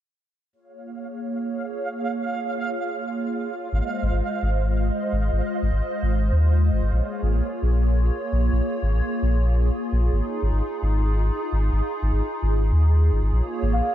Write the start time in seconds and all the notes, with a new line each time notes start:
0.53 A#3 F4 G#4 C#5 F5
3.73 G#1 G#3 C5 D#5
4.03 G#1
4.13 G#1
4.42 G#1
5.12 G#1
5.32 G#1
5.62 G#1
5.73 G#1
6.02 G#1
6.32 D#2
6.72 G#1
6.82 G#1
6.92 A#1 A#3 F4 G#4 C#5
7.23 G#1
7.32 A#1
7.62 A#1
8.32 A#1
8.52 A#1
8.82 G#1
8.92 A#1
9.22 A#1
9.92 A#1
10.12 G#1 D#4
10.42 G#1
10.52 G#1
10.82 G#1
11.52 G#1
11.72 G#1
12.02 G#1
12.13 G#1
12.43 G#1
12.73 D#2
13.12 G#1
13.22 G#1
13.32 A#1 A#3 F4 C#5 C6
13.62 G#1
13.72 A#1 F5